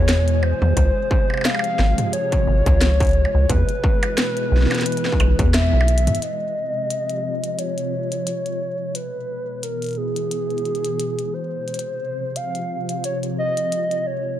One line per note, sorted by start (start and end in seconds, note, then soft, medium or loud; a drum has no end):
0.00 0.54 E2 medium
0.00 0.77 B2 medium
0.00 0.77 E3 medium
0.00 14.40 G#3 medium
0.00 14.40 G#4 medium
0.00 0.44 C#5 loud
0.09 snare loud
0.09 closed hi-hat medium
0.28 closed hi-hat soft
0.43 1.46 C5 loud
0.43 percussion blips medium
0.62 0.74 E2 medium
0.62 mid tom medium
0.77 0.92 C#2 loud
0.77 3.50 C3 medium
0.77 kick loud
0.77 closed hi-hat medium
1.04 3.49 F3 medium
1.11 kick loud
1.30 percussion blips soft
1.34 percussion blips soft
1.37 percussion blips soft
1.41 2.12 F5 loud
1.41 snare loud
1.41 closed hi-hat medium
1.41 percussion blips medium
1.45 percussion blips medium
1.50 percussion blips medium
1.55 percussion blips medium
1.59 percussion blips medium
1.64 closed hi-hat soft
1.79 1.94 G#1 medium
1.79 snare medium
1.98 closed hi-hat medium
1.98 mid tom medium
2.13 3.51 C#5 loud
2.13 closed hi-hat medium
2.32 kick medium
2.32 closed hi-hat soft
2.47 2.62 G#1 medium
2.66 3.27 C#2 medium
2.66 kick loud
2.66 closed hi-hat medium
2.81 snare loud
2.81 closed hi-hat medium
3.00 kick loud
3.00 closed hi-hat soft
3.03 closed hi-hat soft
3.05 closed hi-hat soft
3.07 closed hi-hat soft
3.09 closed hi-hat soft
3.11 closed hi-hat soft
3.13 closed hi-hat soft
3.25 percussion blips soft
3.35 3.46 C#2 medium
3.50 3.65 E2 medium
3.50 6.22 B2 medium
3.50 5.54 B4 loud
3.50 kick loud
3.50 closed hi-hat medium
3.67 6.22 E3 medium
3.67 closed hi-hat soft
3.84 kick loud
4.03 closed hi-hat soft
4.03 percussion blips medium
4.18 snare loud
4.18 closed hi-hat medium
4.37 closed hi-hat soft
4.52 4.67 B1 loud
4.57 snare soft
4.61 snare soft
4.66 snare soft
4.71 snare soft
4.71 closed hi-hat soft
4.71 percussion blips medium
4.75 snare soft
4.75 closed hi-hat soft
4.78 snare soft
4.78 closed hi-hat soft
4.82 snare medium
4.82 closed hi-hat medium
4.92 closed hi-hat soft
4.97 closed hi-hat soft
5.05 snare medium
5.12 kick medium
5.20 5.35 B1 medium
5.20 closed hi-hat soft
5.20 percussion blips medium
5.39 5.73 E2 medium
5.39 kick loud
5.39 closed hi-hat medium
5.54 6.24 E5 loud
5.54 snare loud
5.54 closed hi-hat medium
5.73 6.09 B1 medium
5.81 percussion blips medium
5.88 closed hi-hat medium
5.98 closed hi-hat medium
6.07 6.19 G#2 medium
6.07 closed hi-hat medium
6.07 mid tom medium
6.15 closed hi-hat medium
6.22 8.95 C3 medium
6.22 7.60 D#5 loud
6.22 closed hi-hat medium
6.43 8.95 F3 medium
6.90 closed hi-hat medium
7.10 closed hi-hat soft
7.44 closed hi-hat medium
7.59 8.97 C#5 loud
7.59 closed hi-hat medium
7.78 closed hi-hat soft
8.12 closed hi-hat medium
8.27 closed hi-hat medium
8.46 closed hi-hat soft
8.95 11.68 B2 medium
8.95 9.65 B4 loud
8.95 closed hi-hat medium
9.31 11.68 E3 medium
9.63 9.99 A#4 medium
9.63 closed hi-hat medium
9.82 closed hi-hat soft
9.84 closed hi-hat soft
9.87 closed hi-hat soft
9.89 closed hi-hat soft
9.97 11.35 G#4 loud
10.16 closed hi-hat medium
10.31 closed hi-hat medium
10.50 closed hi-hat soft
10.58 closed hi-hat soft
10.65 closed hi-hat soft
10.75 closed hi-hat soft
10.85 closed hi-hat medium
11.00 closed hi-hat medium
11.19 closed hi-hat soft
11.34 12.38 C5 loud
11.68 14.40 C3 medium
11.68 closed hi-hat soft
11.74 closed hi-hat soft
11.79 closed hi-hat medium
11.95 14.40 F3 medium
12.36 13.04 F5 loud
12.36 closed hi-hat medium
12.55 closed hi-hat soft
12.89 closed hi-hat soft
13.04 13.18 C#5 loud
13.04 closed hi-hat medium
13.23 closed hi-hat soft
13.38 14.08 D#5 loud
13.57 closed hi-hat medium
13.72 closed hi-hat medium
13.91 closed hi-hat soft
14.07 14.40 C#5 loud